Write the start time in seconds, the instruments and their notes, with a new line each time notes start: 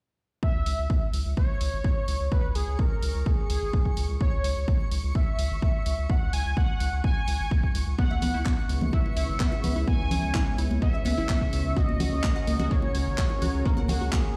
0.43 analog synth lead E5, synth texture C#6, kick
0.55 analog synth bass C#2
0.66 analog synth bass C#2, open hi-hat
0.78 analog synth bass C#2
0.90 kick
1.13 analog synth bass C#2, open hi-hat
1.26 analog synth bass C#2
1.37 analog synth lead C#5, kick
1.61 analog synth bass C#2, open hi-hat
1.73 analog synth bass G#1
1.84 kick
2.08 analog synth bass C#2, open hi-hat
2.20 analog synth bass C#2
2.32 analog synth lead B4, kick
2.44 analog synth bass C#2
2.55 analog synth bass C#2, analog synth lead G#4, open hi-hat
2.67 analog synth bass C#2
2.79 analog synth lead A#4, kick
3.03 analog synth bass C#2, open hi-hat
3.15 analog synth bass C#2
3.26 analog synth lead G#4, kick
3.50 analog synth bass C#2, analog synth lead G#4, open hi-hat
3.62 analog synth bass G#1
3.73 kick
3.85 kick
3.97 analog synth bass C#2, open hi-hat
4.09 analog synth bass C#2
4.21 analog synth lead C#5, kick
4.33 analog synth bass C#2
4.44 analog synth bass C#2, open hi-hat
4.56 analog synth bass C#2
4.68 kick
4.91 analog synth bass C#2, open hi-hat
5.04 analog synth bass C#2
5.15 analog synth lead E5, kick
5.39 analog synth bass C#2, open hi-hat
5.51 analog synth bass G#1
5.62 kick
5.86 analog synth bass C#2, open hi-hat
5.98 analog synth bass C#2
6.10 analog synth lead F#5, kick
6.22 analog synth bass C#2
6.33 analog synth bass C#2, analog synth lead G#5, open hi-hat
6.45 analog synth bass C#2
6.57 analog synth lead F#5, kick
6.80 analog synth bass C#2, open hi-hat
6.92 analog synth bass C#2
7.04 analog synth lead G#5, kick
7.28 analog synth bass C#2, analog synth lead G#5, open hi-hat
7.40 analog synth bass G#1
7.51 kick
7.63 kick
7.75 analog synth bass C#2, open hi-hat
7.87 analog synth bass C#2
7.98 analog synth pad C#3 G#3 B3 C#4 E4, synth pluck B3, analog synth lead F#5, kick
8.10 analog synth bass C#2, synth pluck E5, high conga
8.22 analog synth bass C#2, synth pluck B3, open hi-hat, low conga
8.34 analog synth bass C#2, synth pluck E4
8.45 synth pluck B3, kick, clap
8.69 analog synth bass C#2, open hi-hat
8.81 analog synth bass C#2, high conga, low conga
8.93 synth pluck E4, analog synth lead E5, kick
9.06 high bongo
9.17 analog synth bass C#2, synth pluck E4, open hi-hat
9.29 analog synth bass G#1
9.40 synth pluck B3, kick, clap
9.52 synth pluck E5, high bongo
9.64 analog synth bass C#2, synth pluck B3, open hi-hat, low conga
9.76 analog synth bass C#2, synth pluck E4
9.87 synth pluck B3, analog synth lead G#5, kick
9.99 analog synth bass C#2
10.11 analog synth bass C#2, open hi-hat, low conga
10.23 analog synth bass C#2
10.34 synth pluck E4, kick, clap
10.58 analog synth bass C#2, synth pluck E4, open hi-hat
10.70 analog synth bass C#2, high conga
10.82 synth pluck B3, analog synth lead E5, kick
10.94 synth pluck E5
11.05 analog synth bass C#2, synth pluck B3, open hi-hat, high conga
11.18 analog synth bass G#1, synth pluck E4, high bongo
11.29 synth pluck B3, kick, clap
11.41 kick
11.53 analog synth bass C#2, open hi-hat
11.65 analog synth bass C#2
11.76 analog synth pad C#4 F#4 G#4 A#4, synth pluck F#4, analog synth lead D#5, kick
11.89 analog synth bass C#2, high conga
12.00 analog synth bass C#2, synth pluck F#4, open hi-hat, low conga
12.12 analog synth bass C#2
12.23 synth pluck A#3, kick, clap
12.36 synth pluck F#5
12.47 analog synth bass C#2, synth pluck A#3, open hi-hat
12.59 analog synth bass C#2, synth pluck F#4, high conga, low conga
12.71 synth pluck A#3, analog synth lead C#5, kick
12.82 high bongo
12.95 analog synth bass C#2, open hi-hat
13.07 analog synth bass G#1
13.18 synth pluck F#4, kick, clap
13.30 high bongo
13.42 analog synth bass C#2, synth pluck F#4, open hi-hat, low conga
13.54 analog synth bass C#2
13.65 synth pluck A#3, analog synth lead A#4, kick
13.77 analog synth bass C#2, synth pluck F#5, high conga
13.88 analog synth bass C#2, synth pluck A#3, analog synth lead F#4, open hi-hat, low conga
14.01 analog synth bass C#2, synth pluck F#4
14.12 synth pluck A#3, analog synth lead G#4, kick, clap